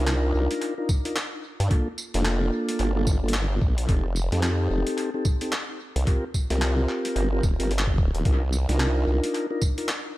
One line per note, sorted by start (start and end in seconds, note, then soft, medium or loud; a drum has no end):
0.00 0.33 C2 loud
0.00 0.74 D4 medium
0.00 0.74 D#4 medium
0.00 0.74 F4 medium
0.00 0.74 A#4 medium
0.07 clap loud
0.07 closed hi-hat medium
0.35 0.48 C2 loud
0.51 closed hi-hat medium
0.62 closed hi-hat medium
0.78 0.91 D4 medium
0.78 0.91 D#4 medium
0.78 0.91 F4 medium
0.78 0.91 A#4 loud
0.89 kick loud
0.89 tambourine medium
1.05 1.18 D4 medium
1.05 1.18 D#4 medium
1.05 1.18 F4 medium
1.05 1.18 A#4 loud
1.05 closed hi-hat medium
1.16 clap loud
1.16 closed hi-hat medium
1.60 1.69 G2 loud
1.60 closed hi-hat medium
1.70 1.88 A#3 medium
1.70 1.88 D4 medium
1.70 1.88 F4 medium
1.70 1.88 A4 medium
1.70 kick loud
1.70 closed hi-hat medium
1.98 tambourine medium
2.14 2.51 F1 loud
2.14 2.92 A#3 medium
2.14 2.92 D4 medium
2.14 2.92 F4 medium
2.14 2.92 A4 loud
2.14 snare soft
2.14 closed hi-hat medium
2.25 clap loud
2.25 closed hi-hat medium
2.69 closed hi-hat medium
2.79 3.21 G1 loud
2.79 closed hi-hat medium
2.96 3.09 A#3 loud
2.96 3.09 D4 medium
2.96 3.09 F4 medium
2.96 3.09 A4 loud
3.07 kick loud
3.07 tambourine medium
3.23 3.60 G1 loud
3.23 3.36 A#3 medium
3.23 3.36 D4 medium
3.23 3.36 F4 medium
3.23 3.36 A4 medium
3.28 closed hi-hat medium
3.34 clap loud
3.34 closed hi-hat medium
3.62 3.87 A#1 loud
3.62 kick loud
3.78 closed hi-hat medium
3.89 4.30 F1 medium
3.89 4.06 C4 medium
3.89 4.06 D#4 medium
3.89 4.07 G4 medium
3.89 4.06 A4 loud
3.89 kick loud
3.89 closed hi-hat medium
4.16 tambourine medium
4.32 4.69 F2 loud
4.32 5.10 C4 medium
4.32 5.10 D#4 medium
4.32 5.10 G4 medium
4.32 5.10 A4 loud
4.32 snare soft
4.32 closed hi-hat medium
4.43 clap loud
4.43 closed hi-hat medium
4.71 4.84 F1 loud
4.87 closed hi-hat medium
4.98 closed hi-hat medium
5.14 5.27 C4 medium
5.14 5.27 D#4 medium
5.14 5.27 G4 medium
5.14 5.27 A4 loud
5.25 kick loud
5.25 tambourine medium
5.41 5.54 C4 medium
5.41 5.54 D#4 medium
5.41 5.54 G4 medium
5.41 5.54 A4 loud
5.41 closed hi-hat medium
5.52 clap loud
5.52 closed hi-hat medium
5.96 6.05 C2 medium
5.96 closed hi-hat medium
6.07 6.25 C4 medium
6.07 6.25 F4 medium
6.07 6.24 G4 medium
6.07 6.24 A#4 medium
6.07 kick loud
6.07 closed hi-hat medium
6.34 kick medium
6.34 tambourine medium
6.50 6.87 C2 loud
6.50 7.29 C4 medium
6.50 7.28 F4 medium
6.50 7.29 G4 medium
6.50 7.29 A#4 loud
6.50 snare soft
6.50 closed hi-hat medium
6.62 clap loud
6.62 closed hi-hat medium
6.89 clap soft
7.05 closed hi-hat medium
7.16 7.42 G1 loud
7.16 closed hi-hat medium
7.32 7.45 C4 loud
7.32 7.45 F4 medium
7.32 7.45 G4 medium
7.32 7.45 A#4 loud
7.43 7.57 D#1 loud
7.43 kick loud
7.43 tambourine medium
7.59 8.12 G1 loud
7.59 7.72 C4 medium
7.59 7.72 F4 medium
7.59 7.72 G4 medium
7.59 7.72 A#4 medium
7.59 closed hi-hat medium
7.71 closed hi-hat medium
7.79 clap loud
7.87 kick medium
7.98 kick loud
8.14 8.24 D#1 medium
8.14 closed hi-hat medium
8.25 8.66 C2 medium
8.25 8.43 D4 medium
8.25 8.43 D#4 medium
8.25 8.43 F4 medium
8.25 8.43 A#4 medium
8.25 kick loud
8.25 closed hi-hat medium
8.53 tambourine medium
8.69 9.05 C2 loud
8.69 9.47 D4 medium
8.69 9.47 D#4 medium
8.69 9.47 F4 medium
8.69 9.47 A#4 medium
8.69 snare soft
8.69 closed hi-hat medium
8.80 clap loud
8.80 closed hi-hat medium
9.07 9.21 C2 loud
9.24 closed hi-hat medium
9.34 closed hi-hat medium
9.51 9.63 D4 medium
9.51 9.63 D#4 medium
9.51 9.63 F4 medium
9.51 9.63 A#4 loud
9.62 kick loud
9.62 tambourine medium
9.78 9.91 D4 medium
9.78 9.91 D#4 medium
9.78 9.91 F4 medium
9.78 9.91 A#4 loud
9.78 closed hi-hat medium
9.89 clap loud
9.89 closed hi-hat medium